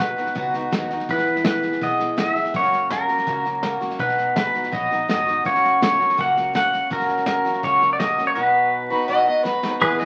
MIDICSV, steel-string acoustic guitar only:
0, 0, Header, 1, 2, 480
1, 0, Start_track
1, 0, Key_signature, 5, "major"
1, 0, Tempo, 363857
1, 1430, Time_signature, 4, 2, 24, 8
1, 13259, End_track
2, 0, Start_track
2, 0, Title_t, "Steel-string acoustic guitar"
2, 0, Program_c, 0, 25
2, 0, Note_on_c, 0, 47, 63
2, 0, Note_on_c, 0, 54, 66
2, 0, Note_on_c, 0, 59, 69
2, 0, Note_on_c, 0, 63, 69
2, 0, Note_on_c, 0, 66, 70
2, 201, Note_off_c, 0, 66, 0
2, 217, Note_on_c, 0, 66, 47
2, 222, Note_off_c, 0, 63, 0
2, 224, Note_off_c, 0, 47, 0
2, 226, Note_off_c, 0, 54, 0
2, 238, Note_on_c, 0, 63, 41
2, 248, Note_off_c, 0, 59, 0
2, 253, Note_on_c, 0, 59, 40
2, 457, Note_off_c, 0, 59, 0
2, 460, Note_on_c, 0, 47, 71
2, 463, Note_off_c, 0, 66, 0
2, 465, Note_off_c, 0, 63, 0
2, 469, Note_on_c, 0, 54, 69
2, 473, Note_on_c, 0, 59, 70
2, 481, Note_on_c, 0, 63, 75
2, 483, Note_on_c, 0, 66, 79
2, 693, Note_off_c, 0, 66, 0
2, 705, Note_off_c, 0, 47, 0
2, 709, Note_off_c, 0, 54, 0
2, 709, Note_on_c, 0, 66, 51
2, 712, Note_off_c, 0, 59, 0
2, 715, Note_off_c, 0, 63, 0
2, 733, Note_on_c, 0, 63, 47
2, 751, Note_on_c, 0, 59, 45
2, 939, Note_on_c, 0, 54, 59
2, 941, Note_off_c, 0, 59, 0
2, 950, Note_off_c, 0, 66, 0
2, 952, Note_off_c, 0, 63, 0
2, 957, Note_on_c, 0, 59, 64
2, 967, Note_on_c, 0, 63, 68
2, 981, Note_on_c, 0, 66, 63
2, 1180, Note_off_c, 0, 66, 0
2, 1185, Note_off_c, 0, 54, 0
2, 1193, Note_off_c, 0, 59, 0
2, 1196, Note_on_c, 0, 66, 53
2, 1199, Note_off_c, 0, 63, 0
2, 1214, Note_on_c, 0, 63, 51
2, 1233, Note_on_c, 0, 59, 45
2, 1433, Note_off_c, 0, 66, 0
2, 1434, Note_off_c, 0, 59, 0
2, 1439, Note_on_c, 0, 52, 63
2, 1442, Note_off_c, 0, 63, 0
2, 1450, Note_on_c, 0, 59, 66
2, 1459, Note_on_c, 0, 64, 74
2, 1466, Note_on_c, 0, 68, 69
2, 2132, Note_off_c, 0, 68, 0
2, 2148, Note_on_c, 0, 68, 51
2, 2154, Note_off_c, 0, 64, 0
2, 2155, Note_off_c, 0, 52, 0
2, 2160, Note_off_c, 0, 59, 0
2, 2169, Note_on_c, 0, 64, 46
2, 2183, Note_on_c, 0, 59, 40
2, 2388, Note_off_c, 0, 59, 0
2, 2389, Note_off_c, 0, 68, 0
2, 2394, Note_on_c, 0, 52, 68
2, 2395, Note_off_c, 0, 64, 0
2, 2404, Note_on_c, 0, 59, 72
2, 2411, Note_on_c, 0, 64, 74
2, 2418, Note_on_c, 0, 68, 77
2, 2612, Note_off_c, 0, 68, 0
2, 2627, Note_on_c, 0, 68, 47
2, 2631, Note_off_c, 0, 64, 0
2, 2632, Note_off_c, 0, 52, 0
2, 2637, Note_off_c, 0, 59, 0
2, 2647, Note_on_c, 0, 64, 46
2, 2661, Note_on_c, 0, 59, 39
2, 2858, Note_off_c, 0, 59, 0
2, 2859, Note_on_c, 0, 52, 54
2, 2869, Note_off_c, 0, 68, 0
2, 2871, Note_off_c, 0, 64, 0
2, 2873, Note_on_c, 0, 59, 57
2, 2887, Note_on_c, 0, 64, 59
2, 2898, Note_on_c, 0, 68, 66
2, 3098, Note_off_c, 0, 68, 0
2, 3105, Note_off_c, 0, 52, 0
2, 3112, Note_off_c, 0, 59, 0
2, 3114, Note_on_c, 0, 68, 51
2, 3119, Note_off_c, 0, 64, 0
2, 3134, Note_on_c, 0, 64, 43
2, 3150, Note_on_c, 0, 59, 36
2, 3349, Note_on_c, 0, 42, 62
2, 3352, Note_off_c, 0, 68, 0
2, 3354, Note_off_c, 0, 59, 0
2, 3355, Note_on_c, 0, 49, 69
2, 3358, Note_on_c, 0, 54, 69
2, 3359, Note_on_c, 0, 58, 66
2, 3363, Note_off_c, 0, 64, 0
2, 3373, Note_on_c, 0, 61, 78
2, 3375, Note_on_c, 0, 66, 73
2, 4050, Note_off_c, 0, 66, 0
2, 4054, Note_off_c, 0, 61, 0
2, 4055, Note_on_c, 0, 66, 44
2, 4067, Note_off_c, 0, 58, 0
2, 4070, Note_off_c, 0, 42, 0
2, 4070, Note_on_c, 0, 61, 44
2, 4073, Note_off_c, 0, 49, 0
2, 4083, Note_on_c, 0, 58, 46
2, 4089, Note_off_c, 0, 54, 0
2, 4094, Note_on_c, 0, 54, 39
2, 4303, Note_off_c, 0, 66, 0
2, 4306, Note_off_c, 0, 54, 0
2, 4307, Note_on_c, 0, 42, 73
2, 4310, Note_off_c, 0, 61, 0
2, 4311, Note_on_c, 0, 49, 71
2, 4313, Note_off_c, 0, 58, 0
2, 4322, Note_on_c, 0, 54, 67
2, 4327, Note_on_c, 0, 61, 72
2, 4329, Note_on_c, 0, 58, 70
2, 4332, Note_on_c, 0, 66, 75
2, 4530, Note_off_c, 0, 66, 0
2, 4546, Note_on_c, 0, 66, 52
2, 4547, Note_off_c, 0, 61, 0
2, 4549, Note_off_c, 0, 42, 0
2, 4551, Note_off_c, 0, 49, 0
2, 4557, Note_off_c, 0, 54, 0
2, 4560, Note_off_c, 0, 58, 0
2, 4563, Note_on_c, 0, 61, 47
2, 4574, Note_on_c, 0, 58, 42
2, 4587, Note_on_c, 0, 54, 43
2, 4776, Note_off_c, 0, 54, 0
2, 4786, Note_off_c, 0, 58, 0
2, 4789, Note_off_c, 0, 66, 0
2, 4791, Note_on_c, 0, 54, 55
2, 4797, Note_off_c, 0, 61, 0
2, 4802, Note_on_c, 0, 58, 64
2, 4814, Note_on_c, 0, 61, 62
2, 4828, Note_on_c, 0, 66, 72
2, 5005, Note_off_c, 0, 66, 0
2, 5020, Note_off_c, 0, 61, 0
2, 5021, Note_on_c, 0, 66, 54
2, 5027, Note_off_c, 0, 58, 0
2, 5032, Note_off_c, 0, 54, 0
2, 5036, Note_on_c, 0, 61, 48
2, 5043, Note_on_c, 0, 58, 45
2, 5053, Note_on_c, 0, 54, 42
2, 5264, Note_off_c, 0, 54, 0
2, 5267, Note_off_c, 0, 66, 0
2, 5267, Note_on_c, 0, 47, 66
2, 5274, Note_off_c, 0, 61, 0
2, 5278, Note_off_c, 0, 58, 0
2, 5280, Note_on_c, 0, 54, 69
2, 5286, Note_on_c, 0, 59, 71
2, 5290, Note_on_c, 0, 63, 75
2, 5292, Note_on_c, 0, 66, 64
2, 5980, Note_off_c, 0, 66, 0
2, 5985, Note_off_c, 0, 63, 0
2, 5985, Note_on_c, 0, 66, 46
2, 5990, Note_off_c, 0, 47, 0
2, 5999, Note_off_c, 0, 59, 0
2, 6001, Note_on_c, 0, 63, 44
2, 6021, Note_on_c, 0, 59, 41
2, 6220, Note_off_c, 0, 59, 0
2, 6222, Note_on_c, 0, 47, 70
2, 6224, Note_off_c, 0, 63, 0
2, 6226, Note_off_c, 0, 54, 0
2, 6229, Note_off_c, 0, 66, 0
2, 6231, Note_on_c, 0, 54, 70
2, 6236, Note_on_c, 0, 59, 75
2, 6240, Note_on_c, 0, 63, 76
2, 6244, Note_on_c, 0, 66, 84
2, 6457, Note_off_c, 0, 66, 0
2, 6467, Note_off_c, 0, 47, 0
2, 6472, Note_off_c, 0, 54, 0
2, 6473, Note_on_c, 0, 66, 50
2, 6474, Note_off_c, 0, 59, 0
2, 6476, Note_off_c, 0, 63, 0
2, 6492, Note_on_c, 0, 63, 43
2, 6514, Note_on_c, 0, 59, 38
2, 6703, Note_off_c, 0, 59, 0
2, 6703, Note_on_c, 0, 54, 48
2, 6712, Note_off_c, 0, 63, 0
2, 6713, Note_off_c, 0, 66, 0
2, 6719, Note_on_c, 0, 59, 60
2, 6728, Note_on_c, 0, 63, 65
2, 6737, Note_on_c, 0, 66, 61
2, 6925, Note_off_c, 0, 66, 0
2, 6941, Note_on_c, 0, 66, 49
2, 6946, Note_off_c, 0, 63, 0
2, 6948, Note_off_c, 0, 54, 0
2, 6956, Note_off_c, 0, 59, 0
2, 6962, Note_on_c, 0, 63, 44
2, 6977, Note_on_c, 0, 59, 41
2, 7183, Note_on_c, 0, 42, 61
2, 7187, Note_off_c, 0, 66, 0
2, 7190, Note_on_c, 0, 49, 66
2, 7194, Note_off_c, 0, 59, 0
2, 7195, Note_on_c, 0, 54, 66
2, 7197, Note_off_c, 0, 63, 0
2, 7199, Note_on_c, 0, 58, 71
2, 7203, Note_on_c, 0, 66, 80
2, 7205, Note_on_c, 0, 61, 68
2, 7901, Note_off_c, 0, 66, 0
2, 7906, Note_on_c, 0, 66, 55
2, 7907, Note_off_c, 0, 61, 0
2, 7908, Note_off_c, 0, 42, 0
2, 7912, Note_off_c, 0, 49, 0
2, 7916, Note_off_c, 0, 58, 0
2, 7923, Note_on_c, 0, 61, 48
2, 7932, Note_on_c, 0, 58, 44
2, 7938, Note_off_c, 0, 54, 0
2, 7944, Note_on_c, 0, 54, 38
2, 8138, Note_off_c, 0, 54, 0
2, 8142, Note_on_c, 0, 42, 67
2, 8144, Note_off_c, 0, 58, 0
2, 8148, Note_off_c, 0, 61, 0
2, 8148, Note_on_c, 0, 49, 75
2, 8150, Note_off_c, 0, 66, 0
2, 8154, Note_on_c, 0, 54, 77
2, 8160, Note_on_c, 0, 58, 74
2, 8164, Note_on_c, 0, 61, 72
2, 8174, Note_on_c, 0, 66, 84
2, 8375, Note_off_c, 0, 66, 0
2, 8388, Note_off_c, 0, 42, 0
2, 8391, Note_off_c, 0, 49, 0
2, 8391, Note_off_c, 0, 61, 0
2, 8391, Note_on_c, 0, 66, 47
2, 8394, Note_off_c, 0, 54, 0
2, 8397, Note_off_c, 0, 58, 0
2, 8407, Note_on_c, 0, 61, 44
2, 8413, Note_on_c, 0, 58, 41
2, 8427, Note_on_c, 0, 54, 42
2, 8604, Note_off_c, 0, 54, 0
2, 8620, Note_off_c, 0, 58, 0
2, 8620, Note_on_c, 0, 54, 58
2, 8628, Note_off_c, 0, 61, 0
2, 8632, Note_off_c, 0, 66, 0
2, 8636, Note_on_c, 0, 58, 58
2, 8644, Note_on_c, 0, 61, 57
2, 8659, Note_on_c, 0, 66, 63
2, 9107, Note_on_c, 0, 42, 74
2, 9108, Note_off_c, 0, 58, 0
2, 9119, Note_off_c, 0, 54, 0
2, 9119, Note_off_c, 0, 61, 0
2, 9122, Note_on_c, 0, 49, 64
2, 9124, Note_on_c, 0, 54, 74
2, 9124, Note_on_c, 0, 58, 69
2, 9131, Note_off_c, 0, 66, 0
2, 9133, Note_on_c, 0, 61, 72
2, 9137, Note_on_c, 0, 66, 72
2, 9819, Note_off_c, 0, 66, 0
2, 9825, Note_on_c, 0, 66, 51
2, 9828, Note_off_c, 0, 61, 0
2, 9830, Note_off_c, 0, 42, 0
2, 9836, Note_off_c, 0, 58, 0
2, 9838, Note_off_c, 0, 49, 0
2, 9844, Note_on_c, 0, 61, 46
2, 9852, Note_on_c, 0, 58, 43
2, 9855, Note_off_c, 0, 54, 0
2, 9860, Note_on_c, 0, 54, 41
2, 10064, Note_off_c, 0, 54, 0
2, 10068, Note_on_c, 0, 42, 66
2, 10069, Note_off_c, 0, 66, 0
2, 10071, Note_off_c, 0, 58, 0
2, 10075, Note_off_c, 0, 61, 0
2, 10076, Note_on_c, 0, 49, 62
2, 10079, Note_on_c, 0, 54, 73
2, 10087, Note_on_c, 0, 58, 78
2, 10091, Note_on_c, 0, 61, 79
2, 10092, Note_on_c, 0, 66, 75
2, 10290, Note_off_c, 0, 66, 0
2, 10301, Note_off_c, 0, 61, 0
2, 10306, Note_on_c, 0, 66, 50
2, 10311, Note_off_c, 0, 42, 0
2, 10311, Note_off_c, 0, 58, 0
2, 10315, Note_off_c, 0, 49, 0
2, 10317, Note_off_c, 0, 54, 0
2, 10317, Note_on_c, 0, 61, 45
2, 10327, Note_on_c, 0, 58, 41
2, 10347, Note_on_c, 0, 54, 42
2, 10522, Note_off_c, 0, 54, 0
2, 10536, Note_off_c, 0, 58, 0
2, 10537, Note_on_c, 0, 54, 52
2, 10548, Note_off_c, 0, 61, 0
2, 10550, Note_off_c, 0, 66, 0
2, 10552, Note_on_c, 0, 58, 57
2, 10563, Note_on_c, 0, 61, 62
2, 10573, Note_on_c, 0, 66, 63
2, 10769, Note_off_c, 0, 66, 0
2, 10784, Note_on_c, 0, 66, 47
2, 10785, Note_off_c, 0, 54, 0
2, 10788, Note_off_c, 0, 61, 0
2, 10793, Note_off_c, 0, 58, 0
2, 10804, Note_on_c, 0, 61, 46
2, 10816, Note_on_c, 0, 58, 46
2, 10825, Note_on_c, 0, 54, 40
2, 11012, Note_off_c, 0, 54, 0
2, 11019, Note_on_c, 0, 47, 74
2, 11027, Note_off_c, 0, 58, 0
2, 11028, Note_on_c, 0, 54, 67
2, 11029, Note_off_c, 0, 66, 0
2, 11032, Note_on_c, 0, 59, 63
2, 11033, Note_off_c, 0, 61, 0
2, 11038, Note_on_c, 0, 63, 77
2, 11044, Note_on_c, 0, 66, 67
2, 11727, Note_off_c, 0, 66, 0
2, 11743, Note_on_c, 0, 66, 55
2, 11746, Note_off_c, 0, 47, 0
2, 11746, Note_off_c, 0, 63, 0
2, 11750, Note_off_c, 0, 54, 0
2, 11752, Note_off_c, 0, 59, 0
2, 11761, Note_on_c, 0, 63, 53
2, 11783, Note_on_c, 0, 59, 44
2, 11973, Note_off_c, 0, 59, 0
2, 11976, Note_on_c, 0, 47, 76
2, 11980, Note_off_c, 0, 63, 0
2, 11980, Note_on_c, 0, 54, 77
2, 11988, Note_off_c, 0, 66, 0
2, 11989, Note_on_c, 0, 59, 80
2, 11996, Note_on_c, 0, 63, 82
2, 12001, Note_on_c, 0, 66, 84
2, 12194, Note_off_c, 0, 66, 0
2, 12209, Note_on_c, 0, 66, 53
2, 12222, Note_off_c, 0, 63, 0
2, 12224, Note_off_c, 0, 47, 0
2, 12226, Note_off_c, 0, 54, 0
2, 12230, Note_off_c, 0, 59, 0
2, 12238, Note_on_c, 0, 63, 48
2, 12249, Note_on_c, 0, 59, 39
2, 12455, Note_on_c, 0, 54, 62
2, 12460, Note_off_c, 0, 59, 0
2, 12460, Note_off_c, 0, 66, 0
2, 12468, Note_off_c, 0, 63, 0
2, 12476, Note_on_c, 0, 59, 67
2, 12484, Note_on_c, 0, 63, 70
2, 12496, Note_on_c, 0, 66, 62
2, 12684, Note_off_c, 0, 66, 0
2, 12700, Note_on_c, 0, 66, 55
2, 12703, Note_off_c, 0, 54, 0
2, 12703, Note_off_c, 0, 63, 0
2, 12713, Note_off_c, 0, 59, 0
2, 12718, Note_on_c, 0, 63, 48
2, 12735, Note_on_c, 0, 59, 42
2, 12929, Note_off_c, 0, 59, 0
2, 12937, Note_on_c, 0, 52, 70
2, 12945, Note_off_c, 0, 66, 0
2, 12945, Note_on_c, 0, 59, 78
2, 12950, Note_off_c, 0, 63, 0
2, 12955, Note_on_c, 0, 64, 79
2, 12966, Note_on_c, 0, 68, 79
2, 13157, Note_off_c, 0, 68, 0
2, 13173, Note_on_c, 0, 68, 51
2, 13183, Note_off_c, 0, 52, 0
2, 13183, Note_off_c, 0, 64, 0
2, 13187, Note_off_c, 0, 59, 0
2, 13199, Note_on_c, 0, 64, 50
2, 13214, Note_on_c, 0, 59, 44
2, 13259, Note_off_c, 0, 59, 0
2, 13259, Note_off_c, 0, 64, 0
2, 13259, Note_off_c, 0, 68, 0
2, 13259, End_track
0, 0, End_of_file